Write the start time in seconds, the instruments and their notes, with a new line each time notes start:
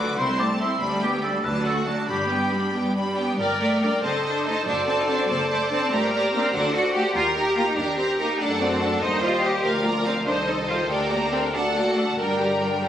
Already playing: cello section D2, violin section F#4 D6, oboe B4
0.00 viola section D3
0.18 cello section C2, double bass section C2, viola section C4, violin section E4 C6, oboe C5
0.38 viola section A3, violin section C4 A5, oboe D5
0.60 viola section C4, violin section E4 C6, oboe E5
0.80 double bass section D2, cello section D2, viola section G3, violin section D4 B5
1.01 viola section B3, violin section G4 G5, oboe G4
1.23 viola section G3, violin section D4 B5, oboe A4
1.44 cello section D2, double bass section D2, viola section F#3, violin section D4 A5, oboe B4
1.66 viola section A3, violin section F#4 F#5, oboe A4
1.87 viola section F#3, violin section D4 A5, oboe F#4
2.08 double bass section G1, cello section G2, viola section G3, violin section D4 B5, oboe G4
2.30 viola section B3, violin section G4 G5
2.52 viola section G3, violin section D4 B5
2.73 cello section G2, viola section B3, violin section G4 G5
2.95 viola section G3, violin section D4 B5
3.18 viola section B3, violin section G4 G5
3.39 double bass section G1, violin section A#4 D5 G5, viola section A#4 D5
3.60 cello section A3, viola section A#4 D5, violin section D5 G5
3.82 french horn section G3 D4, cello section A#3, viola section A#4 D5, violin section D5 G5
4.03 double bass section F#1, cello section C4, viola section A4 C5, violin section A4 D#5 A5
4.24 cello section D4, viola section A4 C5, violin section D#5 A5
4.45 french horn section A3 D#4, cello section D#4, viola section A4 C5, violin section D#5 A5
4.66 double bass section F#1, cello section D4, violin section F#4 D5 A5, viola section A4 C5
4.87 cello section C4, viola section A4 C5, violin section D5 A5
4.99 cello section D#4
5.07 french horn section C4 D4, cello section D4, viola section A4 C5, violin section D5 A5
5.20 cello section C4
5.29 double bass section F#1, cello section A#3, viola section A4 C5, violin section D5 A5
5.50 cello section A3, viola section A4 C5, violin section D5 A5
5.71 french horn section C4 D4, cello section C4, viola section A4 C5, violin section D5 A5
5.92 double bass section G1, cello section A3, viola section G4 A#4, violin section C5 D5 A#5
6.13 cello section A#3, viola section G4 A#4, violin section D5 A#5
6.33 french horn section A#3 D4, cello section C4, viola section G4 A#4, violin section D5 A#5
6.54 double bass section D2, cello section D4, viola section F#4 A4, violin section D5 F#5
6.74 cello section F#4, viola section F#4 A4, violin section D5 F#5
6.95 french horn section A3 F#4, viola section F#4 A4, cello section G4, violin section D5 F#5
7.15 double bass section D#2, cello section F4, viola section G4, violin section A#4 A#5
7.36 cello section D#4, viola section G4, violin section A#4 A#5
7.46 cello section G4
7.56 french horn section A#3 G4, cello section F4, viola section G4, violin section A#4 A#5
7.67 cello section D#4
7.76 double bass section D#2, cello section D4, violin section G4 A#4 A#5, viola section G4
7.97 cello section C4, viola section G4, violin section A#4 A#5
8.18 french horn section A#3 G4, cello section D#4, viola section G4, violin section A#4 A#5
8.39 double bass section F#2, french horn section A3 A4, cello section D4, viola section D4 A4, violin section A4 F#5 A5
8.60 cello section C4, viola section F#4, violin section D5 F#5
8.80 viola section D4 A4, cello section D4, violin section F#5 A5
9.01 double bass section D#2, french horn section G3 C5, viola section D#4 C5, cello section D#4, violin section C5 D#5
9.22 cello section F4, viola section G4 D#5, violin section C5 G5
9.42 viola section D#4 C5, cello section G4, violin section D#5
9.63 double bass section D2, french horn section F3 A#4, viola section F4 A#4, violin section A#4 F5
9.84 cello section A#3, viola section F4 A#4, violin section D5 A#5
10.05 cello section C4, viola section F4 A#4, violin section F5
10.26 double bass section C2, french horn section D#3 A4, cello section D4, violin section A4 C5 D#5, viola section C5
10.47 cello section D#4, viola section A4, violin section C5 D#5
10.68 cello section F4, violin section C5 D#5, viola section C5
10.89 double bass section D2, french horn section D3 G4, viola section D4 A#4, violin section A#4 G5
11.10 cello section A#3, viola section G4, violin section D5 A#5
11.31 cello section C4, viola section D4 A#4, violin section A#4 G5
11.52 french horn section D3 F#4, viola section D4 A4, cello section D4, violin section A4 F#5 A5
11.74 cello section A#3, viola section F#4, violin section D5 F#5
11.96 cello section A3, viola section D4 A4, violin section F#5 A5
12.18 double bass section G2, french horn section D3 A#4, cello section G3, viola section D4 A#4, violin section A#4 G5
12.40 viola section G4, violin section D5 A#5
12.62 viola section D4 A#4, violin section A#4 G5
12.83 french horn section G3, viola section G4, violin section D5 A#5